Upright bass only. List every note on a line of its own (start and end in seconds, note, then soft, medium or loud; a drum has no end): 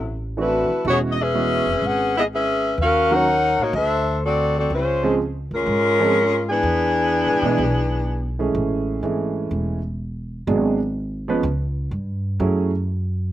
0.00 0.66 A1 medium
0.69 muted upright bass stroke soft
0.85 1.62 E1 medium
1.66 1.80 F1 medium
1.82 2.74 G#1 medium
2.78 3.55 D#2 medium
3.59 3.73 A2 medium
3.73 4.66 D2 medium
4.70 5.47 C#2 medium
5.51 5.65 D2 medium
5.66 6.59 G#2 medium
6.63 7.23 E2 medium
7.26 7.41 G#2 medium
7.42 7.57 B2 medium
7.58 8.51 B1 medium
8.54 8.99 A1 medium
9.03 9.48 G#1 medium
9.51 10.43 E1 medium
10.47 11.40 G#1 medium
11.43 11.88 C#2 medium
11.91 12.36 G2 medium
12.40 13.32 F#2 medium